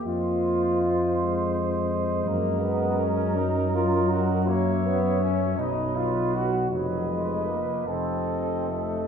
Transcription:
<<
  \new Staff \with { instrumentName = "Cornet" } { \time 6/8 \key f \dorian \tempo 4. = 54 ees''2.~ | \key ees \minor ees''2. | fes''4. dis''4. | ees''4. ees''4. | }
  \new Staff \with { instrumentName = "Flugelhorn" } { \time 6/8 \key f \dorian c''2. | \key ees \minor bes'2. | des''4. b'4. | ces''4. a'4. | }
  \new Staff \with { instrumentName = "Trombone section" } { \time 6/8 \key f \dorian f'2~ f'8 r8 | \key ees \minor bes8 ces'8 des'8 ees'8 f'8 ges'8 | bes8 ces'8 des'8 dis'8 f'8 fis'8 | ges8 aes8 bes8 c'4 a8 | }
  \new Staff \with { instrumentName = "Trombone" } { \clef bass \time 6/8 \key f \dorian bes4 r8 aes4.~ | \key ees \minor aes4. ges4.~ | ges2. | f4. f4. | }
  \new Staff \with { instrumentName = "Tuba" } { \clef bass \time 6/8 \key f \dorian f,2. | \key ees \minor ges,2.~ | ges,4. b,,4. | f,,4. f,,4. | }
>>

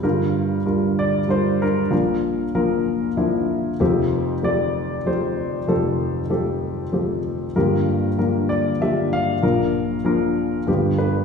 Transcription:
<<
  \new Staff \with { instrumentName = "Grand piano" } { \time 3/4 \key f \major \tempo 4 = 96 << { bes'4. d''8 c''8 <d' bes'>8~ | <d' bes'>2~ <d' bes'>8 r8 | r4 d''4 c''4 | a'4 a'4. r8 |
<f' bes'>4. d''8 e''8 <d'' f''>8~ | <d'' f''>2~ <d'' f''>8 b'8 | } \\ { <g d' f'>4 <g d' f' bes'>4 <g d' f' bes'>4 | <f bes d' bes'>4 <f bes d' bes'>4 <f bes d' e'>4 | <f a c' g'>4 <f a c' g'>4 <f a c' g'>4 | <f a c' g'>4 <f a c' g'>4 <f a c' g'>4 |
<f bes d' g'>4 <f bes d' bes'>4 <f bes d' g'>4 | <f bes d' bes'>4 <f bes d' bes'>4 <f b d' g'>4 | } >> }
  \new Staff \with { instrumentName = "Grand piano" } { \clef bass \time 3/4 \key f \major <g,, g,>2. | <bes,, bes,>2. | <f,, f,>2. | <f,, f,>2. |
<g,, g,>2. | <bes,, bes,>2 <g,, g,>4 | }
>>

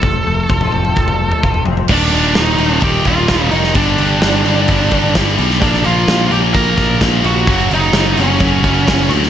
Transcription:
<<
  \new Staff \with { instrumentName = "Lead electric guitar" } { \time 4/4 \key f \dorian \tempo 4 = 129 <a' a''>2.~ <a' a''>8 r8 | <d' d''>4 <ees' ees''>4 <g' g''>8 <f' f''>4 <ees' ees''>8 | <d' d''>2. r4 | <d' d''>8 <f' f''>4 <g' g''>8 <bes' bes''>4 r8 <ges' ges''>8~ |
<ges' ges''>8 <ees' ees''>4 <des' des''>2 r8 | }
  \new Staff \with { instrumentName = "Clean electric guitar" } { \time 4/4 \key f \dorian f,8 a8 f'8 c'8 f8 a8 f'8 c'8 | r1 | r1 | r1 |
r1 | }
  \new Staff \with { instrumentName = "Distorted electric guitar" } { \clef bass \time 4/4 \key f \dorian r1 | <ees, bes, ees>8 <ees, bes, ees>8 <ees, bes, ees>8 <ees, bes, ees>8 <ees, bes, ees>8 <ees, bes, ees>8 <ees, bes, ees>8 <ees, bes, ees>8 | <g, d g>8 <g, d g>8 <g, d g>8 <g, d g>8 <g, d g>8 <g, d g>8 <g, d g>8 <g, d g>8 | <bes, f bes>8 <bes, f bes>8 <bes, f bes>8 <bes, f bes>8 <bes, f bes>8 <bes, f bes>8 <bes, f bes>8 <bes, f bes>8 |
<ges, des ges>8 <ges, des ges>8 <ges, des ges>8 <ges, des ges>8 <ges, des ges>8 <ges, des ges>8 <ges, des ges>8 <ges, des ges>8 | }
  \new Staff \with { instrumentName = "Picked electric bass" } { \clef bass \time 4/4 \key f \dorian f,,8 f,,8 f,,8 f,,8 f,,4 f,,8 f,,8 | ees,,8 ees,,8 ees,,8 ees,,8 ees,,8 ees,,8 ees,,8 f,,8 | g,,8 g,,8 g,,8 g,,8 g,,8 g,,8 g,,8 b,,8 | bes,,8 bes,,8 bes,,8 bes,,8 bes,,8 bes,,8 bes,,8 bes,,8 |
ges,,8 ges,,8 ges,,8 ges,,8 ges,,8 ges,,8 ges,,8 d,8 | }
  \new DrumStaff \with { instrumentName = "Drums" } \drummode { \time 4/4 <bd tomfh>4 <bd tomfh>16 <tomfh toml>16 tomfh16 toml16 <bd tomfh>16 tomfh8 tomfh16 <bd toml>16 tomfh16 <tomfh toml>16 tomfh16 | <cymc bd>8 hho8 <hho sn>8 hho8 <hho bd>8 <hho bd>8 <hho bd sn>8 hho16 sn16 | <hho bd>8 hho8 <hho sn>8 hho8 <hho bd>8 <hho bd>8 <hho bd sn>8 hho16 sn16 | <hho bd>16 sn16 hho8 <hho sn>8 hho8 <hho bd>8 <hho bd sn>8 <hho bd sn>8 hho8 |
<hho bd>8 hho8 <hho sn>8 hho8 <hho bd>8 <hho bd>8 <hho bd sn>8 hho16 sn16 | }
>>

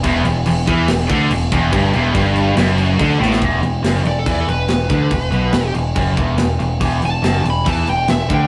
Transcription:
<<
  \new Staff \with { instrumentName = "Lead electric guitar" } { \time 4/4 \key e \minor \tempo 4 = 142 r1 | r1 | r4. d''16 a'16 d''16 a'16 b'4.~ | b'4. r2 r8 |
r8 a''4 b''8 a''8 g''8 e''8 g''8 | }
  \new Staff \with { instrumentName = "Distorted electric guitar" } { \clef bass \time 4/4 \key e \minor e,8 e,8 e,8 e8 e,8 d8 e,8 e,8 | g,8 e,8 g,4 fis,4 d8 a,8 | r1 | r1 |
r1 | }
  \new Staff \with { instrumentName = "Distorted electric guitar" } { \clef bass \time 4/4 \key e \minor e,8 e,8 e,8 e8 e,8 d8 e,8 e,8 | g,8 e,8 g,4 fis,4 d8 a,8 | r1 | r1 |
r1 | }
  \new Staff \with { instrumentName = "Distorted electric guitar" } { \clef bass \time 4/4 \key e \minor e,8 e,8 e,8 e8 e,8 d8 e,8 e,8 | g,8 e,8 g,4 fis,4 d8 a,8 | e,8 e,8 fis,8 e,8 e8 e,8 e,8 d8 | e,8 b,8 e,8 e,8 fis,8 e,8 e,8 e,8 |
e,8 e,8 fis,8 e,8 e8 e,8 e,8 d8 | }
  \new Staff \with { instrumentName = "Picked electric bass" } { \clef bass \time 4/4 \key e \minor e,,8 e,,8 e,,8 e,8 e,,8 d,8 e,,8 e,,8 | g,,8 e,,8 g,,4 fis,,4 d,8 a,,8 | e,,8 e,,8 fis,,8 e,,8 e,8 e,,8 e,,8 d,8 | e,,8 b,,8 e,,8 e,,8 fis,,8 e,,8 e,,8 e,,8 |
e,,8 e,,8 fis,,8 e,,8 e,8 e,,8 e,,8 d,8 | }
  \new DrumStaff \with { instrumentName = "Drums" } \drummode { \time 4/4 <cymc bd>8 cymc8 cymc8 <cymc bd>8 <cymc sn>8 <cymc bd>8 cymc8 <cymc bd>8 | <cymc bd>8 cymc8 <cymc bd>8 cymc8 <cymc sn>8 cymc8 <cymc bd>8 sn16 sn16 | <cymc bd>8 cymc8 <cymc sn>8 cymc8 <cymc bd>8 cymc8 <cymc sn>8 <cymc bd>8 | <cymc bd>8 cymc8 <cymc sn>8 cymc8 <cymc bd>8 <cymc bd>8 <cymc sn>8 cymc8 |
<cymc bd>8 cymc8 <cymc sn>8 cymc8 <cymc bd>8 cymc8 <cymc sn>8 <cymc bd>8 | }
>>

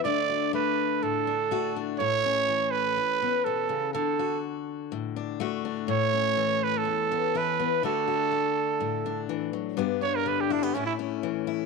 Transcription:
<<
  \new Staff \with { instrumentName = "Trumpet" } { \time 4/4 \key d \major \tempo 4 = 124 d''4 b'4 a'4. r8 | cis''4. b'4. a'4 | a'4 r2. | cis''4. b'16 a'4~ a'16 b'4 |
a'2. r4 | r8 cis''16 bes'16 b'16 g'16 d'16 b16 cis'16 e'16 r4. | }
  \new Staff \with { instrumentName = "Steel-string acoustic guitar" } { \time 4/4 \key d \major << { <a d' fis'>8 fis'2 d'8 fis'8 d'8 | r8 cis'2 b4. | r8 fis'2 d'8 fis'8 d'8 | r8 cis'2 b8 e'8 b8 |
<a d' fis'>8 fis'2 d'4. | <b d' g'>8 d'4 e'16 g'16 <a cis' e'>8 cis'4 e'8 | } \\ { d4 a4 a,4 a4 | a,4 e2 b,8 cis8 | d2 a,4 a4 | a,4 e4 e,4 e4 |
d4 a4 a,4 e8 fis8 | g,4 d4 a,4 e4 | } >> }
>>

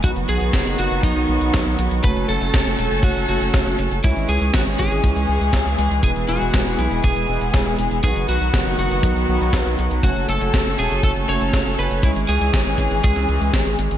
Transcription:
<<
  \new Staff \with { instrumentName = "Lead electric guitar" } { \time 4/4 \key fis \dorian \tempo 4 = 120 fis'8 gis'4 fis'8 dis'4. r8 | b'8 a'4. fis'8 fis'4 r8 | e'8 gis'8 fis'8 gis'4. r4 | gis'8 fis'4 e'8 gis'4. r8 |
gis'8 fis'4 fis'2 r8 | fis'8 a'4 gis'8 a'8 cis''4 b'8 | e'8 gis'4. gis'4. r8 | }
  \new Staff \with { instrumentName = "Analog polysynth" } { \time 4/4 \key fis \dorian <fis b dis' b'>2~ <fis b dis' b'>8 <fis b dis' b'>4. | <a cis' fis' cis''>2~ <a cis' fis' cis''>8 <a cis' fis' cis''>4. | <gis cis' e' cis''>2~ <gis cis' e' cis''>8 r4. | <gis b e' b'>2~ <gis b e' b'>8 <gis b e' b'>4. |
<fis b dis' b'>2~ <fis b dis' b'>8 <fis b dis' b'>4. | <a cis' fis' cis''>2~ <a cis' fis' cis''>8 <a cis' fis' cis''>4. | <gis cis' e' cis''>2~ <gis cis' e' cis''>8 r4. | }
  \new Staff \with { instrumentName = "String section" } { \time 4/4 \key fis \dorian << { <dis fis fis'>1 | <a a'>1 | <e gis gis'>1~ | <e gis gis'>1 |
<dis fis fis'>1 | <a a'>1 | <e gis gis'>1 | } \\ { b1 | cis'1 | cis'1 | b1~ |
b1 | cis'1~ | cis'1 | } >> }
  \new Staff \with { instrumentName = "Analog synth bass" } { \clef bass \time 4/4 \key fis \dorian b,,16 fis,,16 b,,16 b,,16 fis,,16 fis,,16 fis,,16 fis,,16 b,,16 b,,16 b,,16 b,,16 b,,16 b,,16 b,,16 b,,16 | fis,,16 fis,,16 fis,,16 fis,,16 fis,,16 fis,,16 e,,16 fis,,16 fis,,16 fis,,16 fis,,16 fis,,16 fis,,16 fis,,16 fis,,16 fis,,16 | cis,16 gis,,16 cis,16 cis,16 gis,,16 gis,,16 gis,,16 gis,,16 cis,16 cis,16 cis,16 cis,16 cis,16 cis,16 cis,16 cis,16 | e,,16 e,,16 e,,16 e,,16 e,,16 e,,16 b,,16 e,,16 e,,16 e,,16 e,,16 e,,16 e,,16 e,,16 e,,16 e,,16 |
b,,16 fis,,16 b,,16 b,,16 fis,,16 fis,,16 fis,,16 fis,,16 b,,16 b,,16 b,,16 b,,16 b,,16 b,,16 b,,16 b,,16 | fis,,16 fis,,16 fis,,16 fis,,16 fis,,16 fis,,16 e,,16 fis,,16 fis,,16 fis,,16 fis,,16 fis,,16 fis,,16 fis,,16 fis,,16 fis,,16 | cis,16 gis,,16 cis,16 cis,16 gis,,16 gis,,16 gis,,16 gis,,16 cis,16 cis,16 cis,16 cis,16 gis,,16 gis,,16 gis,,16 gis,,16 | }
  \new DrumStaff \with { instrumentName = "Drums" } \drummode { \time 4/4 <hh bd>16 hh16 hh16 hh16 <hh bd sn>16 hh16 hh16 hh16 <hh bd>16 hh8 hh16 <hh bd sn>16 hh16 hh16 hh16 | <hh bd>16 hh16 hh16 hh16 <hh bd sn>16 hh16 hh16 hh16 <hh bd>16 hh8 hh16 <hh bd sn>16 hh16 hh16 hh16 | <hh bd>16 hh16 hh16 hh16 <hh bd sn>16 hh16 <hh bd>16 hh16 <hh bd>16 hh8 hh16 <hh bd sn>16 hh16 hh16 hh16 | <hh bd>16 hh16 hh16 hh16 <hh bd sn>16 hh16 hh16 hh16 <hh bd>16 hh8 hh16 <hh bd sn>16 hh16 hh16 hh16 |
<hh bd>16 hh16 hh16 hh16 <hh bd sn>16 hh16 hh16 hh16 <hh bd>16 hh8 hh16 <hh bd sn>16 hh16 hh16 hh16 | <hh bd>16 hh16 hh16 hh16 <hh bd sn>16 hh16 hh16 hh16 <hh bd>16 hh8 hh16 <hh bd sn>16 hh16 hh16 hh16 | <hh bd>16 hh16 hh16 hh16 <hh bd sn>16 hh16 <hh bd>16 hh16 <hh bd>16 <hh sn>16 hh16 hh16 <hh bd sn>16 hh16 hh16 hh16 | }
>>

